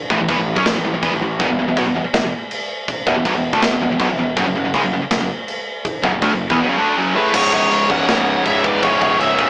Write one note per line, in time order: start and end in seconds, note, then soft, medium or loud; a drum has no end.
0.10 0.19 A1 loud
0.10 0.18 A2 medium
0.10 0.19 E3 loud
0.10 kick loud
0.20 0.28 A1 medium
0.20 0.29 A2 medium
0.20 0.27 E3 medium
0.28 0.37 E2 loud
0.28 0.37 E3 loud
0.28 0.37 B3 loud
0.28 kick loud
0.28 crash medium
0.38 0.55 A1 medium
0.38 0.52 A2 medium
0.38 0.53 E3 medium
0.56 0.65 F#2 loud
0.56 0.65 F#3 loud
0.56 0.65 C#4 loud
0.56 kick loud
0.65 0.74 A1 medium
0.65 0.73 A2 medium
0.65 0.73 E3 medium
0.65 snare loud
0.65 crash medium
0.74 0.83 A1 medium
0.74 0.83 A2 medium
0.74 0.84 E3 medium
0.84 0.93 A1 medium
0.84 0.92 A2 medium
0.84 0.93 E3 medium
0.93 1.02 A1 medium
0.93 1.03 A2 medium
0.93 1.02 E3 medium
1.03 1.11 E2 medium
1.03 1.12 E3 medium
1.03 1.12 B3 medium
1.03 kick loud
1.03 crash medium
1.11 1.20 A1 medium
1.11 1.21 A2 medium
1.11 1.21 E3 medium
1.21 1.39 A1 medium
1.21 1.36 A2 medium
1.21 1.36 E3 medium
1.40 1.48 E1 loud
1.40 1.48 E2 loud
1.40 1.48 B2 loud
1.40 kick loud
1.40 crash medium
1.49 1.58 E1 medium
1.49 1.57 E2 medium
1.49 1.58 B2 medium
1.58 1.67 E1 medium
1.58 1.66 E2 medium
1.58 1.67 B2 medium
1.67 1.76 E1 medium
1.67 1.76 E2 medium
1.67 1.75 B2 medium
1.76 1.85 B1 loud
1.76 1.85 B2 loud
1.76 1.85 F#3 loud
1.76 kick loud
1.76 crash medium
1.85 1.95 E1 medium
1.85 1.94 E2 medium
1.85 1.94 B2 medium
1.95 2.04 E1 medium
1.95 2.03 E2 medium
1.95 2.05 B2 medium
2.04 muted distorted electric guitar stroke medium
2.04 muted picked electric bass stroke soft
2.13 2.22 E1 medium
2.13 2.21 E2 medium
2.13 2.21 B2 medium
2.13 kick loud
2.13 snare loud
2.13 crash medium
2.22 2.31 E1 medium
2.22 2.32 E2 medium
2.22 2.32 B2 medium
2.51 crash medium
2.88 kick loud
2.88 crash medium
3.07 3.15 E1 loud
3.07 3.15 E2 loud
3.07 3.15 B2 loud
3.07 kick loud
3.16 3.25 E1 medium
3.16 3.25 E2 medium
3.16 3.24 B2 medium
3.25 3.34 B1 medium
3.25 3.34 B2 medium
3.25 3.35 F#3 loud
3.25 kick loud
3.25 crash medium
3.35 3.52 E1 medium
3.35 3.50 E2 medium
3.35 3.50 B2 medium
3.53 3.62 D2 loud
3.53 3.62 D3 medium
3.53 3.62 A3 loud
3.53 kick loud
3.62 3.72 E1 medium
3.62 3.69 E2 medium
3.62 3.70 B2 medium
3.62 snare loud
3.62 crash medium
3.71 3.81 E1 medium
3.71 3.78 E2 medium
3.71 3.79 B2 medium
3.80 3.90 E1 medium
3.80 3.88 E2 medium
3.80 3.89 B2 medium
3.89 3.99 E1 medium
3.89 3.99 E2 medium
3.89 3.98 B2 medium
3.99 4.08 B1 loud
3.99 4.08 B2 medium
3.99 4.08 F#3 loud
3.99 kick loud
3.99 crash medium
4.09 4.18 E1 medium
4.09 4.17 E2 medium
4.09 4.17 B2 medium
4.18 4.36 E1 medium
4.18 4.33 E2 medium
4.18 4.33 B2 medium
4.36 4.46 F#1 loud
4.36 4.45 F#2 loud
4.36 4.45 C#3 loud
4.36 kick loud
4.36 crash medium
4.46 4.55 F#1 medium
4.46 4.54 F#2 medium
4.46 4.55 C#3 medium
4.56 4.64 F#1 medium
4.56 4.64 F#2 medium
4.56 4.64 C#3 medium
4.65 4.74 F#1 medium
4.65 4.74 F#2 medium
4.65 4.73 C#3 medium
4.74 4.82 C#2 loud
4.74 4.83 C#3 medium
4.74 4.83 G#3 loud
4.74 kick loud
4.74 crash medium
4.83 4.92 F#1 medium
4.83 4.92 F#2 medium
4.83 4.92 C#3 medium
4.92 5.01 F#1 medium
4.92 5.00 F#2 medium
4.92 5.02 C#3 medium
5.01 muted distorted electric guitar stroke medium
5.11 5.20 F#1 medium
5.11 5.18 F#2 medium
5.11 5.19 C#3 medium
5.11 kick loud
5.11 snare loud
5.11 crash medium
5.20 5.29 F#1 medium
5.20 5.29 F#2 medium
5.20 5.30 C#3 medium
5.48 crash medium
5.85 kick loud
5.85 crash medium
6.02 6.13 F#1 medium
6.02 6.11 F#2 loud
6.02 6.12 C#3 loud
6.02 kick loud
6.12 6.21 F#1 medium
6.12 6.22 F#2 medium
6.12 6.21 C#3 medium
6.22 6.31 D2 loud
6.22 6.31 D3 medium
6.22 6.31 A3 loud
6.22 kick loud
6.22 crash medium
6.31 6.50 F#1 medium
6.31 6.46 F#2 medium
6.31 6.47 C#3 medium
6.50 6.59 E2 loud
6.50 6.59 E3 loud
6.50 6.59 B3 loud
6.50 kick loud
6.59 6.68 E2 medium
6.59 6.69 B2 loud
6.68 6.78 F#2 loud
6.68 6.77 C#3 loud
6.77 6.96 D3 medium
6.77 6.97 A3 loud
6.77 6.97 D4 loud
6.96 7.15 F#2 loud
6.96 7.15 C#3 loud
6.96 7.15 F#3 medium
7.15 7.33 A2 medium
7.15 7.34 E3 medium
7.15 7.34 A3 medium
7.15 7.33 G#4 medium
7.15 7.34 B4 medium
7.34 7.47 C#1 loud
7.34 7.52 C#2 loud
7.34 7.52 G#2 loud
7.34 7.53 C#3 loud
7.34 7.52 G#4 medium
7.34 7.52 C#5 medium
7.34 kick loud
7.34 crash loud
7.34 crash medium
7.52 7.65 E1 loud
7.52 7.71 C#2 loud
7.52 7.71 G#2 loud
7.52 7.72 C#3 loud
7.52 7.88 G#4 medium
7.52 7.91 C#5 medium
7.52 kick medium
7.71 7.85 C#1 medium
7.71 7.89 C#2 medium
7.71 7.89 G#2 medium
7.71 7.90 C#3 loud
7.71 crash medium
7.90 8.03 C#1 loud
7.90 8.07 C#2 medium
7.90 8.08 G#2 medium
7.90 8.08 C#3 loud
7.90 8.42 C#5 medium
7.90 8.43 F#5 medium
7.90 kick medium
8.08 8.34 C#1 loud
8.08 8.26 C#2 loud
8.08 8.27 G#2 loud
8.08 8.27 C#3 loud
8.08 snare loud
8.08 crash medium
8.27 8.44 C#2 medium
8.27 8.45 G#2 medium
8.27 8.46 C#3 medium
8.45 8.59 C#1 medium
8.45 8.63 C#2 medium
8.45 8.63 G#2 medium
8.45 8.64 C#3 medium
8.45 8.63 C#5 medium
8.45 8.65 E5 loud
8.45 kick medium
8.45 crash medium
8.64 8.77 C#1 medium
8.64 8.81 C#2 medium
8.64 8.82 G#2 medium
8.64 8.83 C#3 medium
8.64 8.81 B4 medium
8.64 8.83 D5 medium
8.64 kick loud
8.82 8.96 C#1 loud
8.82 8.99 C#2 loud
8.82 9.00 G#2 medium
8.82 9.01 C#3 loud
8.82 9.17 G#4 medium
8.82 9.18 C#5 medium
8.82 kick loud
8.82 crash medium
9.00 9.15 E1 loud
9.00 9.17 C#2 medium
9.00 9.18 G#2 medium
9.00 9.19 C#3 loud
9.00 kick loud
9.19 9.33 C#1 loud
9.19 9.37 C#2 medium
9.19 9.37 G#2 medium
9.19 9.38 C#3 medium
9.19 9.50 C#5 medium
9.19 9.50 E5 loud
9.19 crash medium
9.38 9.50 C#1 medium
9.38 9.50 C#2 medium
9.38 9.50 G#2 medium
9.38 9.50 C#3 loud
9.38 kick medium